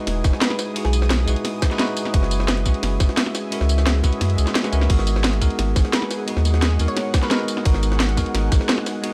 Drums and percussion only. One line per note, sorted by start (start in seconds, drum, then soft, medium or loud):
0.07 snare medium
0.07 closed hi-hat medium
0.07 ride medium
0.24 kick loud
0.24 snare medium
0.24 closed hi-hat medium
0.24 ride medium
0.24 tambourine medium
0.33 snare soft
0.41 snare loud
0.41 closed hi-hat medium
0.41 ride medium
0.50 snare medium
0.59 snare medium
0.59 closed hi-hat medium
0.59 ride medium
0.59 tambourine medium
0.76 closed hi-hat medium
0.76 ride medium
0.85 snare soft
0.93 closed hi-hat medium
0.93 ride medium
0.93 tambourine medium
1.02 snare medium
1.10 snare loud
1.10 closed hi-hat medium
1.10 ride medium
1.28 closed hi-hat medium
1.28 ride medium
1.28 tambourine medium
1.36 closed hi-hat soft
1.45 snare medium
1.45 closed hi-hat medium
1.45 ride medium
1.62 kick loud
1.62 snare loud
1.62 closed hi-hat medium
1.62 ride medium
1.62 tambourine medium
1.71 snare soft
1.71 ride soft
1.79 snare loud
1.79 closed hi-hat medium
1.79 ride medium
1.97 closed hi-hat medium
1.97 ride medium
1.97 tambourine medium
2.05 snare soft
2.14 kick loud
2.14 closed hi-hat medium
2.14 ride medium
2.23 snare soft
2.31 closed hi-hat medium
2.31 ride medium
2.31 tambourine medium
2.40 snare medium
2.48 snare loud
2.48 closed hi-hat loud
2.48 ride medium
2.57 ride soft
2.66 kick medium
2.66 snare soft
2.66 closed hi-hat medium
2.66 ride medium
2.66 tambourine medium
2.74 closed hi-hat soft
2.83 snare medium
2.83 closed hi-hat loud
2.83 ride medium
3.00 kick loud
3.00 snare medium
3.00 closed hi-hat medium
3.00 ride medium
3.00 tambourine medium
3.09 snare soft
3.17 snare loud
3.17 closed hi-hat medium
3.17 ride medium
3.26 snare medium
3.35 snare medium
3.35 closed hi-hat medium
3.35 ride medium
3.35 tambourine medium
3.52 closed hi-hat loud
3.52 ride medium
3.61 snare soft
3.69 closed hi-hat medium
3.69 ride medium
3.69 tambourine medium
3.78 snare medium
3.78 tambourine soft
3.87 snare loud
3.87 closed hi-hat loud
3.87 ride medium
4.04 kick medium
4.04 snare soft
4.04 closed hi-hat medium
4.04 ride medium
4.04 tambourine medium
4.13 closed hi-hat soft
4.21 snare medium
4.21 closed hi-hat loud
4.21 ride medium
4.30 closed hi-hat soft
4.38 closed hi-hat medium
4.38 ride medium
4.38 tambourine medium
4.47 snare soft
4.47 snare medium
4.47 closed hi-hat soft
4.47 tambourine soft
4.55 snare loud
4.55 closed hi-hat loud
4.55 ride medium
4.64 snare soft
4.64 snare medium
4.64 tambourine soft
4.73 closed hi-hat medium
4.73 ride medium
4.73 tambourine medium
4.81 snare soft
4.90 kick loud
4.90 closed hi-hat medium
4.90 crash medium
4.90 ride medium
4.99 snare soft
5.07 closed hi-hat medium
5.07 ride medium
5.07 tambourine medium
5.16 snare medium
5.24 snare loud
5.24 closed hi-hat loud
5.24 ride medium
5.33 ride soft
5.41 kick medium
5.41 snare soft
5.41 closed hi-hat medium
5.41 ride medium
5.41 tambourine medium
5.50 closed hi-hat soft
5.59 snare medium
5.59 closed hi-hat loud
5.59 ride medium
5.76 kick loud
5.76 snare medium
5.76 closed hi-hat medium
5.76 ride medium
5.76 tambourine medium
5.85 snare soft
5.93 snare loud
5.93 closed hi-hat medium
5.93 ride medium
6.02 snare medium
6.11 snare medium
6.11 closed hi-hat medium
6.11 ride medium
6.11 tambourine medium
6.28 closed hi-hat medium
6.28 ride medium
6.37 snare soft
6.45 closed hi-hat medium
6.45 ride medium
6.45 tambourine medium
6.54 snare medium
6.62 snare loud
6.62 closed hi-hat medium
6.62 ride medium
6.79 closed hi-hat medium
6.79 ride medium
6.79 tambourine medium
6.88 closed hi-hat soft
6.97 snare medium
6.97 closed hi-hat medium
6.97 ride medium
7.14 kick loud
7.14 snare loud
7.14 closed hi-hat medium
7.14 ride medium
7.14 tambourine medium
7.23 snare soft
7.23 ride soft
7.31 snare loud
7.31 closed hi-hat loud
7.31 ride medium
7.48 closed hi-hat medium
7.48 ride medium
7.48 tambourine medium
7.57 snare soft
7.65 kick loud
7.65 closed hi-hat medium
7.65 ride medium
7.74 snare soft
7.83 closed hi-hat medium
7.83 ride medium
7.83 tambourine medium
7.92 snare medium
8.00 snare loud
8.00 closed hi-hat medium
8.00 ride medium
8.09 ride soft
8.17 kick medium
8.17 snare soft
8.17 closed hi-hat medium
8.17 ride medium
8.17 tambourine medium
8.26 closed hi-hat soft
8.35 snare medium
8.35 closed hi-hat medium
8.35 ride medium
8.52 kick loud
8.52 snare medium
8.52 closed hi-hat medium
8.52 ride medium
8.52 tambourine medium
8.61 snare soft
8.69 snare loud
8.69 closed hi-hat medium
8.69 ride medium
8.78 snare medium
8.86 snare medium
8.86 closed hi-hat medium
8.86 ride medium
8.86 tambourine medium
9.04 closed hi-hat medium
9.04 ride medium